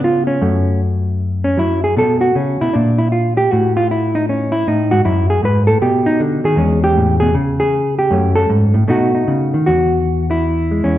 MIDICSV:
0, 0, Header, 1, 2, 480
1, 0, Start_track
1, 0, Key_signature, 4, "major"
1, 0, Tempo, 385852
1, 522, Time_signature, 4, 2, 24, 8
1, 13663, End_track
2, 0, Start_track
2, 0, Title_t, "Hollow-body jazz guitar"
2, 0, Program_c, 0, 26
2, 0, Note_on_c, 0, 49, 72
2, 0, Note_on_c, 0, 59, 44
2, 53, Note_on_c, 0, 65, 90
2, 332, Note_off_c, 0, 65, 0
2, 337, Note_on_c, 0, 61, 82
2, 495, Note_off_c, 0, 49, 0
2, 516, Note_on_c, 0, 42, 76
2, 518, Note_off_c, 0, 59, 0
2, 523, Note_on_c, 0, 57, 50
2, 993, Note_off_c, 0, 61, 0
2, 1796, Note_on_c, 0, 61, 86
2, 1955, Note_on_c, 0, 54, 56
2, 1964, Note_off_c, 0, 61, 0
2, 1979, Note_on_c, 0, 64, 78
2, 2279, Note_off_c, 0, 64, 0
2, 2288, Note_on_c, 0, 68, 85
2, 2418, Note_off_c, 0, 42, 0
2, 2419, Note_off_c, 0, 54, 0
2, 2422, Note_off_c, 0, 57, 0
2, 2447, Note_on_c, 0, 47, 74
2, 2451, Note_off_c, 0, 68, 0
2, 2469, Note_on_c, 0, 69, 97
2, 2744, Note_off_c, 0, 69, 0
2, 2749, Note_on_c, 0, 66, 88
2, 2923, Note_off_c, 0, 47, 0
2, 2923, Note_off_c, 0, 66, 0
2, 2928, Note_on_c, 0, 49, 58
2, 2934, Note_on_c, 0, 61, 60
2, 3237, Note_off_c, 0, 49, 0
2, 3239, Note_off_c, 0, 61, 0
2, 3247, Note_on_c, 0, 47, 55
2, 3252, Note_on_c, 0, 64, 90
2, 3401, Note_on_c, 0, 62, 65
2, 3415, Note_off_c, 0, 47, 0
2, 3415, Note_off_c, 0, 64, 0
2, 3421, Note_on_c, 0, 46, 73
2, 3712, Note_on_c, 0, 64, 77
2, 3716, Note_off_c, 0, 62, 0
2, 3877, Note_off_c, 0, 64, 0
2, 3882, Note_on_c, 0, 65, 70
2, 4191, Note_off_c, 0, 65, 0
2, 4196, Note_on_c, 0, 67, 91
2, 4361, Note_off_c, 0, 46, 0
2, 4366, Note_off_c, 0, 67, 0
2, 4366, Note_on_c, 0, 66, 77
2, 4385, Note_on_c, 0, 45, 68
2, 4681, Note_off_c, 0, 66, 0
2, 4687, Note_on_c, 0, 65, 89
2, 4858, Note_off_c, 0, 65, 0
2, 4867, Note_on_c, 0, 64, 79
2, 5164, Note_on_c, 0, 63, 80
2, 5172, Note_off_c, 0, 64, 0
2, 5336, Note_off_c, 0, 63, 0
2, 5340, Note_on_c, 0, 61, 69
2, 5623, Note_on_c, 0, 64, 89
2, 5649, Note_off_c, 0, 61, 0
2, 5800, Note_off_c, 0, 45, 0
2, 5807, Note_off_c, 0, 64, 0
2, 5813, Note_on_c, 0, 45, 56
2, 5821, Note_on_c, 0, 63, 83
2, 6111, Note_on_c, 0, 66, 99
2, 6117, Note_on_c, 0, 44, 64
2, 6123, Note_off_c, 0, 45, 0
2, 6124, Note_off_c, 0, 63, 0
2, 6275, Note_off_c, 0, 44, 0
2, 6280, Note_on_c, 0, 42, 73
2, 6281, Note_off_c, 0, 66, 0
2, 6286, Note_on_c, 0, 64, 76
2, 6588, Note_off_c, 0, 64, 0
2, 6593, Note_on_c, 0, 68, 90
2, 6746, Note_off_c, 0, 42, 0
2, 6751, Note_on_c, 0, 44, 60
2, 6765, Note_off_c, 0, 68, 0
2, 6781, Note_on_c, 0, 71, 93
2, 7050, Note_off_c, 0, 71, 0
2, 7055, Note_on_c, 0, 69, 89
2, 7065, Note_off_c, 0, 44, 0
2, 7066, Note_on_c, 0, 45, 62
2, 7231, Note_off_c, 0, 45, 0
2, 7233, Note_off_c, 0, 69, 0
2, 7236, Note_on_c, 0, 47, 74
2, 7240, Note_on_c, 0, 67, 76
2, 7542, Note_on_c, 0, 63, 95
2, 7543, Note_off_c, 0, 67, 0
2, 7712, Note_on_c, 0, 50, 61
2, 7714, Note_off_c, 0, 63, 0
2, 8010, Note_off_c, 0, 50, 0
2, 8015, Note_on_c, 0, 51, 63
2, 8026, Note_on_c, 0, 68, 84
2, 8162, Note_on_c, 0, 40, 73
2, 8168, Note_off_c, 0, 47, 0
2, 8181, Note_on_c, 0, 56, 49
2, 8188, Note_off_c, 0, 51, 0
2, 8189, Note_on_c, 0, 61, 50
2, 8498, Note_off_c, 0, 68, 0
2, 8506, Note_on_c, 0, 67, 92
2, 8668, Note_on_c, 0, 45, 59
2, 8952, Note_off_c, 0, 67, 0
2, 8957, Note_on_c, 0, 68, 97
2, 8972, Note_off_c, 0, 45, 0
2, 8978, Note_on_c, 0, 47, 62
2, 9117, Note_off_c, 0, 56, 0
2, 9119, Note_off_c, 0, 61, 0
2, 9127, Note_off_c, 0, 40, 0
2, 9130, Note_off_c, 0, 47, 0
2, 9134, Note_off_c, 0, 68, 0
2, 9135, Note_on_c, 0, 49, 77
2, 9451, Note_on_c, 0, 68, 94
2, 9928, Note_off_c, 0, 68, 0
2, 9935, Note_on_c, 0, 67, 84
2, 10075, Note_off_c, 0, 49, 0
2, 10085, Note_on_c, 0, 42, 73
2, 10103, Note_on_c, 0, 57, 51
2, 10109, Note_on_c, 0, 61, 49
2, 10389, Note_off_c, 0, 67, 0
2, 10393, Note_on_c, 0, 69, 106
2, 10563, Note_off_c, 0, 42, 0
2, 10568, Note_on_c, 0, 44, 63
2, 10573, Note_off_c, 0, 69, 0
2, 10873, Note_on_c, 0, 45, 64
2, 10884, Note_off_c, 0, 44, 0
2, 11034, Note_off_c, 0, 57, 0
2, 11038, Note_off_c, 0, 45, 0
2, 11043, Note_on_c, 0, 47, 78
2, 11047, Note_off_c, 0, 61, 0
2, 11049, Note_on_c, 0, 57, 65
2, 11061, Note_on_c, 0, 63, 65
2, 11074, Note_on_c, 0, 66, 71
2, 11363, Note_off_c, 0, 63, 0
2, 11378, Note_on_c, 0, 63, 57
2, 11536, Note_off_c, 0, 47, 0
2, 11541, Note_on_c, 0, 49, 64
2, 11866, Note_off_c, 0, 49, 0
2, 11867, Note_on_c, 0, 51, 63
2, 12007, Note_off_c, 0, 66, 0
2, 12020, Note_off_c, 0, 57, 0
2, 12022, Note_on_c, 0, 66, 81
2, 12027, Note_off_c, 0, 63, 0
2, 12036, Note_on_c, 0, 40, 61
2, 12045, Note_off_c, 0, 51, 0
2, 12816, Note_off_c, 0, 66, 0
2, 12821, Note_on_c, 0, 64, 80
2, 13327, Note_on_c, 0, 56, 40
2, 13478, Note_off_c, 0, 40, 0
2, 13484, Note_on_c, 0, 61, 74
2, 13493, Note_on_c, 0, 40, 53
2, 13663, Note_off_c, 0, 40, 0
2, 13663, Note_off_c, 0, 56, 0
2, 13663, Note_off_c, 0, 61, 0
2, 13663, Note_off_c, 0, 64, 0
2, 13663, End_track
0, 0, End_of_file